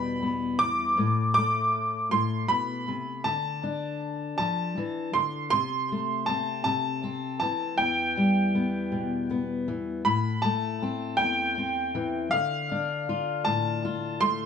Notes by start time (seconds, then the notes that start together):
Already playing: E2 B2 G3 B3 B5
0.23 B3
0.59 E3 D6
0.98 A2
1.34 A3 D6
2.11 A2 C6
2.48 B2 B5
2.88 C3
3.24 D3 A5
3.63 D4
4.38 F3 A5
4.78 E3
5.13 D3 C6
5.50 C3 C6
5.92 A3
6.26 C4 A5
6.64 C3 A5
7.04 C4
7.40 E3 A5
7.78 E2 G5
8.17 G3
8.55 B3
8.92 B2
9.31 B3
9.68 E3
10.05 A2 B5
10.42 A3 A5
10.82 C4
11.17 E2 G5
11.58 C4
11.95 E3
12.31 D3 F5
12.72 D4
13.09 F4
13.45 A2 A5
13.85 F4
14.21 A3 C6